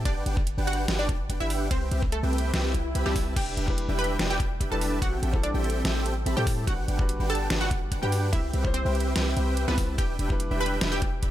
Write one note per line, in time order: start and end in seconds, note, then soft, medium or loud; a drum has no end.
0.05 0.24 G1 loud
0.05 0.31 D4 medium
0.05 0.24 D4 medium
0.05 0.24 G4 medium
0.05 0.24 B4 medium
0.05 0.31 D5 loud
0.05 0.24 F#5 medium
0.05 0.24 G5 loud
0.05 kick loud
0.05 closed hi-hat medium
0.05 ride medium
0.26 0.55 G1 loud
0.26 0.40 D4 medium
0.26 0.40 G4 medium
0.26 0.40 B4 medium
0.26 0.40 F#5 medium
0.26 0.40 G5 medium
0.26 closed hi-hat medium
0.37 kick loud
0.47 closed hi-hat medium
0.58 0.86 G1 loud
0.58 0.86 D4 medium
0.58 0.86 G4 medium
0.58 0.86 B4 medium
0.58 0.86 F#5 medium
0.58 0.86 G5 loud
0.67 0.93 F#4 medium
0.67 0.93 F#5 loud
0.67 closed hi-hat soft
0.73 closed hi-hat medium
0.88 1.28 G1 loud
0.88 1.17 D4 medium
0.88 1.17 G4 medium
0.88 1.17 B4 medium
0.88 1.17 F#5 medium
0.88 1.17 G5 loud
0.88 snare loud
0.88 closed hi-hat medium
0.99 1.32 D4 medium
0.99 1.32 D5 loud
1.09 kick loud
1.09 closed hi-hat medium
1.29 1.38 G1 medium
1.29 1.39 D4 medium
1.29 1.39 G4 medium
1.29 1.39 B4 medium
1.29 1.39 F#5 medium
1.29 1.39 G5 medium
1.29 kick medium
1.29 closed hi-hat medium
1.40 1.69 G1 loud
1.40 1.69 D4 loud
1.40 1.65 E4 medium
1.40 1.68 G4 medium
1.40 1.69 B4 medium
1.40 1.65 E5 medium
1.40 1.68 F#5 medium
1.40 1.68 G5 loud
1.50 open hi-hat loud
1.71 1.90 C2 loud
1.71 1.89 C4 medium
1.71 2.05 C4 medium
1.71 1.89 G4 medium
1.71 1.89 B4 medium
1.71 2.05 C5 medium
1.71 1.89 E5 medium
1.71 1.89 G5 loud
1.71 kick loud
1.71 closed hi-hat medium
1.71 ride medium
1.91 2.21 C2 loud
1.91 2.05 C4 medium
1.91 2.05 G4 medium
1.91 2.05 B4 medium
1.91 2.05 E5 medium
1.91 2.05 G5 medium
1.91 closed hi-hat medium
2.03 kick loud
2.12 2.46 A3 medium
2.12 2.46 A4 loud
2.12 closed hi-hat medium
2.23 2.52 C2 loud
2.23 2.51 C4 medium
2.23 2.51 G4 medium
2.23 2.51 B4 medium
2.23 2.51 E5 medium
2.23 2.51 G5 loud
2.33 closed hi-hat medium
2.38 closed hi-hat medium
2.53 2.93 C2 loud
2.53 2.83 C4 loud
2.53 2.83 G4 medium
2.53 2.83 B4 medium
2.53 2.83 E5 medium
2.53 2.83 G5 loud
2.53 snare loud
2.53 closed hi-hat medium
2.53 swell medium
2.74 kick medium
2.74 closed hi-hat medium
2.95 3.04 C2 loud
2.95 3.04 C4 medium
2.95 3.04 G4 medium
2.95 3.04 B4 medium
2.95 3.04 E5 medium
2.95 3.04 B5 medium
2.95 closed hi-hat medium
3.06 3.35 C2 medium
3.06 3.31 G3 medium
3.06 3.34 C4 loud
3.06 3.31 G4 medium
3.06 3.34 G4 medium
3.06 3.34 B4 medium
3.06 3.34 E5 medium
3.06 3.34 A5 loud
3.06 snare soft
3.16 kick loud
3.16 open hi-hat loud
3.36 3.55 E1 loud
3.36 3.55 D4 medium
3.36 3.55 G4 medium
3.36 3.62 G4 medium
3.36 3.55 B4 medium
3.36 3.55 E5 medium
3.36 3.55 G5 medium
3.36 3.62 G5 loud
3.36 kick loud
3.36 closed hi-hat medium
3.36 crash medium
3.36 ride soft
3.57 3.86 E1 loud
3.57 3.71 D4 medium
3.57 3.71 G4 medium
3.57 3.71 B4 medium
3.57 3.71 E5 medium
3.57 3.71 G5 medium
3.57 closed hi-hat medium
3.66 4.68 G3 medium
3.66 4.69 D4 medium
3.66 4.70 E4 medium
3.66 4.70 B4 medium
3.66 kick loud
3.78 closed hi-hat medium
3.89 4.17 E1 loud
3.89 4.17 D4 medium
3.89 4.17 G4 medium
3.89 4.17 B4 medium
3.89 4.17 E5 medium
3.89 4.17 G5 loud
3.99 4.24 B4 medium
3.99 4.24 B5 medium
3.99 closed hi-hat medium
4.04 closed hi-hat medium
4.19 4.59 E1 loud
4.19 4.48 D4 medium
4.19 4.48 G4 medium
4.19 4.48 B4 medium
4.19 4.48 E5 medium
4.19 4.48 G5 loud
4.19 snare loud
4.19 closed hi-hat medium
4.30 4.63 G4 medium
4.30 4.63 G5 medium
4.40 kick loud
4.40 closed hi-hat medium
4.60 4.69 E1 medium
4.60 4.70 D4 medium
4.60 4.70 G4 medium
4.60 4.70 B4 medium
4.60 4.70 E5 medium
4.60 4.70 B5 loud
4.60 kick medium
4.60 closed hi-hat medium
4.70 5.00 E1 loud
4.70 5.00 G3 medium
4.70 5.01 D4 medium
4.70 5.00 D4 loud
4.70 5.01 E4 medium
4.70 5.00 G4 medium
4.70 4.96 A4 medium
4.70 5.00 B4 medium
4.70 5.01 B4 loud
4.70 5.00 E5 medium
4.70 5.00 A5 loud
4.70 4.96 A5 loud
4.81 open hi-hat loud
5.02 5.21 A1 loud
5.02 5.20 C4 medium
5.02 5.36 F#4 medium
5.02 5.20 G4 medium
5.02 5.20 A4 medium
5.02 5.20 E5 medium
5.02 5.36 F#5 loud
5.02 5.20 G5 medium
5.02 kick loud
5.02 closed hi-hat medium
5.02 ride soft
5.23 5.52 A1 loud
5.23 5.37 C4 medium
5.23 5.37 G4 medium
5.23 5.37 A4 medium
5.23 5.36 E5 medium
5.23 5.37 G5 medium
5.23 closed hi-hat medium
5.31 6.34 G3 medium
5.31 6.34 C4 medium
5.31 6.35 E4 medium
5.31 kick loud
5.35 6.36 A4 loud
5.43 5.77 D4 medium
5.43 5.77 D5 medium
5.43 closed hi-hat medium
5.54 5.83 A1 loud
5.54 5.82 C4 medium
5.54 5.82 G4 medium
5.54 5.82 A4 medium
5.54 5.82 E5 medium
5.54 5.82 G5 loud
5.64 closed hi-hat medium
5.70 closed hi-hat medium
5.84 6.24 A1 loud
5.84 6.14 C4 loud
5.84 6.14 G4 medium
5.84 6.14 A4 medium
5.84 6.14 E5 medium
5.84 6.14 G5 loud
5.84 snare loud
5.84 closed hi-hat medium
6.06 closed hi-hat medium
6.26 6.35 A1 loud
6.26 6.35 C4 medium
6.26 6.35 G4 medium
6.26 6.35 A4 medium
6.26 6.35 E5 medium
6.26 6.35 B5 loud
6.26 closed hi-hat medium
6.36 6.65 A2 loud
6.36 6.66 G3 medium
6.36 6.66 C4 medium
6.36 6.65 C4 loud
6.36 6.67 E4 medium
6.36 6.62 G4 medium
6.36 6.65 G4 medium
6.36 6.65 A4 medium
6.36 6.67 A4 loud
6.36 6.65 E5 medium
6.36 6.62 G5 loud
6.36 6.65 A5 loud
6.47 kick loud
6.47 open hi-hat medium
6.67 6.86 G1 loud
6.67 6.86 D4 medium
6.67 6.93 F#4 medium
6.67 6.86 G4 medium
6.67 6.86 B4 medium
6.67 6.93 F#5 loud
6.67 6.86 F#5 medium
6.67 6.86 G5 loud
6.67 kick loud
6.67 closed hi-hat medium
6.67 ride soft
6.88 7.17 G1 loud
6.88 7.02 D4 medium
6.88 7.02 G4 medium
6.88 7.02 B4 medium
6.88 7.02 F#5 medium
6.88 7.02 G5 medium
6.88 closed hi-hat medium
6.97 7.99 G3 medium
6.97 8.00 D4 medium
6.97 8.01 F#4 medium
6.97 kick loud
7.01 8.01 B4 loud
7.09 closed hi-hat medium
7.20 7.48 G1 loud
7.20 7.48 D4 medium
7.20 7.48 G4 medium
7.20 7.48 B4 medium
7.20 7.48 F#5 medium
7.20 7.48 G5 loud
7.30 7.55 A4 medium
7.30 7.55 A5 loud
7.30 closed hi-hat soft
7.35 closed hi-hat medium
7.50 7.90 G1 loud
7.50 7.79 D4 medium
7.50 7.79 G4 medium
7.50 7.79 B4 medium
7.50 7.79 F#5 medium
7.50 7.79 G5 loud
7.50 snare loud
7.50 closed hi-hat medium
7.61 7.94 F#4 medium
7.61 7.94 F#5 medium
7.71 kick loud
7.71 closed hi-hat medium
7.92 8.00 G1 loud
7.92 8.01 D4 medium
7.92 8.01 G4 medium
7.92 8.01 B4 medium
7.92 8.01 F#5 medium
7.92 8.01 G5 medium
7.92 kick medium
7.92 closed hi-hat medium
8.02 8.35 G2 loud
8.02 8.31 G3 medium
8.02 8.32 D4 medium
8.02 8.31 D4 loud
8.02 8.32 F#4 medium
8.02 8.27 G4 medium
8.02 8.31 G4 medium
8.02 8.31 B4 medium
8.02 8.32 B4 loud
8.02 8.31 F#5 medium
8.02 8.31 G5 loud
8.02 8.27 G5 medium
8.12 open hi-hat medium
8.33 8.52 C2 loud
8.33 8.51 C4 medium
8.33 8.67 E4 medium
8.33 8.51 G4 medium
8.33 8.51 B4 medium
8.33 8.67 E5 medium
8.33 8.51 E5 medium
8.33 8.51 G5 medium
8.33 kick loud
8.33 closed hi-hat medium
8.33 ride soft
8.53 8.83 C2 loud
8.53 8.68 C4 medium
8.53 8.68 G4 medium
8.53 8.68 B4 medium
8.53 8.68 E5 medium
8.53 8.67 G5 medium
8.53 closed hi-hat medium
8.63 9.65 G3 medium
8.63 9.66 C4 medium
8.63 9.66 E4 medium
8.63 9.67 C5 loud
8.63 kick loud
8.74 9.08 C4 medium
8.74 9.08 C5 loud
8.74 closed hi-hat medium
8.85 9.14 C2 loud
8.85 9.13 C4 medium
8.85 9.13 G4 medium
8.85 9.13 B4 medium
8.85 9.13 E5 medium
8.85 9.13 G5 loud
8.95 closed hi-hat soft
9.00 closed hi-hat medium
9.16 9.34 C2 medium
9.16 9.35 C4 medium
9.16 9.35 G4 medium
9.16 9.35 B4 medium
9.16 9.35 E5 medium
9.16 9.35 G5 loud
9.16 snare loud
9.16 closed hi-hat medium
9.36 9.66 C2 loud
9.36 9.65 C4 medium
9.36 9.65 G4 medium
9.36 9.65 B4 medium
9.36 9.65 E5 medium
9.36 9.65 G5 medium
9.36 closed hi-hat medium
9.57 closed hi-hat medium
9.67 10.00 C2 loud
9.67 9.97 G3 medium
9.67 9.93 B3 medium
9.67 9.97 C4 medium
9.67 9.96 C4 medium
9.67 9.97 E4 medium
9.67 9.96 G4 medium
9.67 9.96 B4 medium
9.67 9.93 B4 medium
9.67 9.98 B4 loud
9.67 9.96 E5 medium
9.67 9.96 A5 medium
9.67 snare soft
9.78 kick loud
9.78 open hi-hat medium
9.98 10.17 E1 loud
9.98 10.17 D4 medium
9.98 10.24 G4 medium
9.98 10.17 G4 medium
9.98 10.17 B4 medium
9.98 10.17 E5 medium
9.98 10.23 G5 loud
9.98 10.17 G5 loud
9.98 kick loud
9.98 closed hi-hat medium
9.98 ride soft
10.19 10.49 E1 loud
10.19 10.33 D4 medium
10.19 10.33 G4 medium
10.19 10.33 B4 medium
10.19 10.33 E5 medium
10.19 10.33 G5 medium
10.19 closed hi-hat medium
10.28 11.30 G3 medium
10.28 11.31 D4 medium
10.28 11.31 E4 medium
10.28 kick loud
10.32 11.31 B4 loud
10.40 closed hi-hat medium
10.51 10.79 E1 loud
10.51 10.79 D4 medium
10.51 10.79 G4 medium
10.51 10.79 B4 medium
10.51 10.79 E5 medium
10.51 10.79 G5 loud
10.61 10.86 B4 medium
10.61 10.86 B5 loud
10.61 closed hi-hat soft
10.66 closed hi-hat medium
10.81 11.21 E1 loud
10.81 11.10 D4 medium
10.81 11.10 G4 medium
10.81 11.10 B4 medium
10.81 11.10 E5 medium
10.81 11.10 G5 loud
10.81 snare loud
10.81 closed hi-hat medium
10.92 11.25 G4 medium
10.92 11.25 G5 medium
11.02 kick loud
11.02 closed hi-hat medium
11.22 11.31 E1 loud
11.22 11.31 D4 medium
11.22 11.31 G4 medium
11.22 11.31 B4 medium
11.22 11.31 E5 medium
11.22 11.31 B5 medium
11.22 kick medium
11.22 closed hi-hat medium